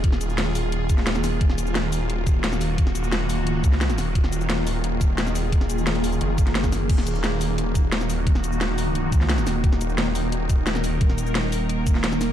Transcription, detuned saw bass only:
0.04 D#1
1.41 D#1
2.78 D#1
3.38 D1
3.64 C#2
3.98 D#1
4.15 D#1
5.52 D#1
5.87 D#1
6.21 F#1
6.89 D#1
8.27 D#1
9.12 C#2
9.47 D#1
9.64 D#1

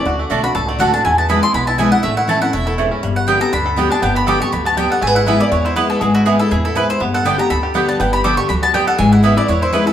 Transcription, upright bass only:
0.06 D2
0.31 B1
0.55 C#2
0.80 D2
1.05 E2
1.54 B1
2.04 A1
2.54 E1
3.03 G1
3.53 D2
4.02 G1
4.52 D2
5.02 G#1
5.52 E2
6.02 G#1
6.51 E2
7.01 G1
7.50 D2
8.00 G1
8.49 D2
8.99 G#1
9.49 E2

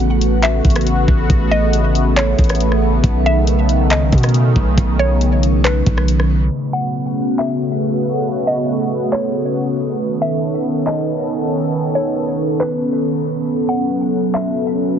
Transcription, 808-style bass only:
Already playing: A1
0.65 A1
1.08 A1
1.30 A1
2.39 A1
3.04 B1
3.91 C#2
4.02 B1
4.13 B2
4.56 B1
4.78 B1
5.87 B1

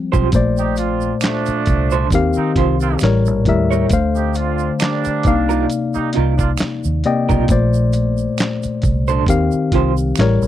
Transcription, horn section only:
0.57 C4 D#4 G4
0.78 C4 D4 F4
1.22 F3 A3 D4
2.36 A#3 C4 D#4
2.80 A#3 C4 F4
4.15 C4 D#4 G4
4.34 C4 D4 F4
4.80 G3 A#3 D4
5.93 G3 A#3 D#4
6.38 A#3 D4 F4

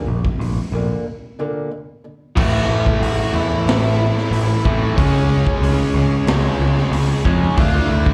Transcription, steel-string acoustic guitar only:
0.08 A#2 D3
0.41 A#2 D3
0.74 A#2 D3 A#3
1.07 A#2 D3
1.39 A#2 D3 A#3
1.71 A#2 D3
2.04 A#2 D3

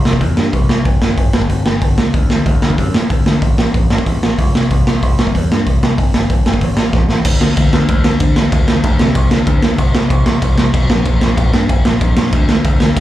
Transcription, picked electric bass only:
0.06 C2
0.21 E2
0.38 G2
0.54 C2
0.69 C2
0.86 G1
1.03 G1
1.18 G1
1.34 G1
1.50 G1
1.66 G1
1.82 G1
1.98 C#2
2.14 D2
2.31 D2
2.46 D2
2.63 D2
2.79 F#2
2.94 A2
3.11 D2
3.26 D2
3.42 A1
3.60 A1
3.75 A1
3.92 A1
4.07 A1
4.23 A1
4.39 C#2
4.56 C2
4.71 C2
4.88 C2
5.03 C2
5.19 C2
5.35 E2
5.52 G2
5.67 C2
5.83 C2
5.98 G1
6.15 G1
6.30 G1
6.46 G1
6.62 A1
6.78 A1
6.94 A1
7.10 A1
7.25 D2
7.42 D2
7.57 D2
7.74 D2
7.89 D2
8.06 D2
8.20 D3
8.37 D2
8.53 D2
8.69 D2
8.84 D2
9.01 C3
9.16 C2
9.32 D2
9.47 D2
9.64 D2
9.79 C2
9.94 C2
10.10 C2
10.27 C2
10.42 C2
10.59 C2
10.74 B1
10.90 A#1
11.06 A#1
11.23 A#1
11.38 A#1
11.54 G2
11.70 G1
11.86 A#1
12.01 A#1
12.18 A#1
12.33 D2
12.50 D2
12.65 D2
12.83 D2
12.97 D2

